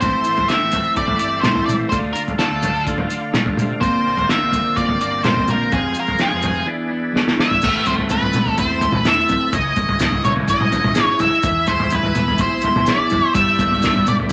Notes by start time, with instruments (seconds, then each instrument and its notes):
Already playing: tonewheel organ C5
0.01 fingered electric bass A1, clean electric guitar A2 E3 A3 C4 E4, tonewheel organ E4 A4 E5, lead electric guitar C5, kick, floor tom, maracas
0.24 fingered electric bass A1, clean electric guitar A3 C4 E4, maracas
0.37 floor tom, maracas
0.48 clean electric guitar E3 A3 C4 E4, lead electric guitar E5, snare, maracas
0.62 fingered electric bass A1
0.72 clean electric guitar A3 C4 E4, floor tom, maracas
0.84 maracas
0.94 clean electric guitar A2 E3 A3 C4 E4, fingered electric bass A2, lead electric guitar D5, kick, maracas
1.08 floor tom
1.19 fingered electric bass G1, clean electric guitar A3 C4 E4, lead electric guitar D5, maracas
1.41 fingered electric bass G1, clean electric guitar E3 A3 C4, lead electric guitar C5, snare, mid tom, maracas
1.46 clean electric guitar E4
1.55 floor tom
1.66 fingered electric bass A1, lead electric guitar D5, mid tom, maracas
1.89 fingered electric bass D2, clean electric guitar D3 A3 D4, tonewheel organ F4 A4 D5 F5, lead electric guitar C5, kick, floor tom, maracas
1.94 clean electric guitar F4
2.13 clean electric guitar A3 D4 F4, lead electric guitar A#4, maracas
2.28 floor tom, maracas
2.38 clean electric guitar D3 A3 D4 F4, lead electric guitar A4, snare, maracas
2.52 fingered electric bass D2
2.62 clean electric guitar A3 D4 F4, floor tom, maracas
2.75 maracas
2.87 clean electric guitar D3 A3 D4 F4, kick, maracas
2.98 fingered electric bass D3, floor tom
3.08 clean electric guitar A3 D4 F4, maracas
3.32 clean electric guitar D3 A3 D4 F4, snare, mid tom, maracas
3.46 fingered electric bass G2, floor tom
3.57 fingered electric bass C3, mid tom, maracas
3.80 fingered electric bass A#1, clean electric guitar A#2 D3 A#3 C4 F4, tonewheel organ F4 A#4 C5, lead electric guitar C5, kick, floor tom, maracas
4.04 fingered electric bass A#1, clean electric guitar A#3 C4 F4
4.17 floor tom, maracas
4.27 clean electric guitar D3 A#3 C4 F4, lead electric guitar E5, snare, maracas
4.43 fingered electric bass A#1
4.51 clean electric guitar A#3 C4 F4, floor tom, maracas
4.65 maracas
4.76 clean electric guitar A#2 D3 A#3 C4 F4, fingered electric bass A#2, lead electric guitar D5, kick, maracas
4.89 floor tom
5.01 fingered electric bass G1, clean electric guitar A#3 C4 F4, lead electric guitar D5, maracas
5.23 fingered electric bass G1, clean electric guitar D3 A#3 C4 F4, lead electric guitar C5, snare, mid tom, maracas
5.37 floor tom
5.48 fingered electric bass A#1, lead electric guitar A#4, mid tom, maracas
5.71 fingered electric bass F1, clean electric guitar F3 G#3 C4 F4, tonewheel organ G#4 F5, lead electric guitar G#4, kick, floor tom, maracas
5.94 clean electric guitar G#3 C4 F4, maracas
6.00 lead electric guitar A#4
6.07 floor tom, maracas
6.18 clean electric guitar F3 G#3 C4 F4, lead electric guitar G#4, snare, maracas
6.33 fingered electric bass F1
6.42 clean electric guitar G#3 C4 F4, floor tom, maracas
6.53 maracas
6.65 clean electric guitar E3 B3 D4 G#4, tonewheel organ E4 B4 D5
6.89 clean electric guitar B3 D4 G#4
7.12 clean electric guitar E3 B3 D4 G#4, snare
7.28 snare
7.39 lead electric guitar E5, snare
7.51 floor tom
7.61 fingered electric bass A1, clean electric guitar A3, tonewheel organ C4 E4 A4 B5, kick, floor tom, crash, maracas
7.86 fingered electric bass A1, clean electric guitar C4, lead electric guitar C5, floor tom, maracas
7.98 floor tom
8.09 clean electric guitar C4, lead electric guitar B4, floor tom, maracas
8.22 fingered electric bass A1, floor tom
8.33 fingered electric bass A1, clean electric guitar A3, mid tom, maracas
8.46 floor tom
8.58 fingered electric bass E2, clean electric guitar C4, lead electric guitar C5, kick, floor tom, maracas
8.81 clean electric guitar A3, floor tom, maracas
8.92 fingered electric bass E2, lead electric guitar B4, floor tom, mid tom
9.05 clean electric guitar E4, lead electric guitar E5, snare, maracas
9.28 fingered electric bass B1, clean electric guitar C4, floor tom, maracas
9.51 fingered electric bass C#2, clean electric guitar C#3, tonewheel organ E4 G#4 C#5 D#5, lead electric guitar D#5, kick, floor tom, maracas
9.75 fingered electric bass C#2, clean electric guitar G#3, kick, floor tom, maracas
9.89 floor tom
9.99 clean electric guitar E4, snare, floor tom, maracas
10.12 fingered electric bass C#2, floor tom
10.24 fingered electric bass C#2, clean electric guitar C#4, lead electric guitar C#5, mid tom, maracas
10.37 floor tom
10.48 fingered electric bass G#1, clean electric guitar E4, lead electric guitar D#5, kick, floor tom, maracas
10.60 mid tom
10.72 clean electric guitar C#4, floor tom, maracas
10.84 fingered electric bass G#1, floor tom, mid tom
10.95 clean electric guitar G#4, snare, maracas
11.04 lead electric guitar C#5
11.18 fingered electric bass C#2, clean electric guitar E4, lead electric guitar E5, floor tom, maracas
11.42 fingered electric bass E2, clean electric guitar E3, tonewheel organ E4 E5 B5, kick, floor tom, maracas
11.66 fingered electric bass E2, clean electric guitar G#3, lead electric guitar C5, floor tom, maracas
11.80 floor tom
11.90 clean electric guitar E4, floor tom, maracas
11.95 lead electric guitar B4
12.03 fingered electric bass E2, floor tom
12.14 fingered electric bass E2, clean electric guitar B3, mid tom, maracas
12.28 floor tom
12.38 fingered electric bass B1, clean electric guitar E4, lead electric guitar C5, kick, floor tom, maracas
12.61 clean electric guitar B3, floor tom, maracas
12.76 fingered electric bass B1, floor tom, mid tom
12.85 clean electric guitar G#4, lead electric guitar D5, snare, maracas
13.09 fingered electric bass F#2, clean electric guitar E4, floor tom, maracas
13.34 fingered electric bass G2, clean electric guitar G3, tonewheel organ E4 G4 D5, lead electric guitar E5, kick, floor tom, maracas
13.57 fingered electric bass G2, clean electric guitar B3, kick, floor tom, maracas
13.72 floor tom
13.81 clean electric guitar E4, snare, floor tom, maracas
13.96 fingered electric bass G2, floor tom
14.05 fingered electric bass G2, clean electric guitar B3, lead electric guitar D5, mid tom, maracas
14.20 floor tom
14.29 clean electric guitar E4, maracas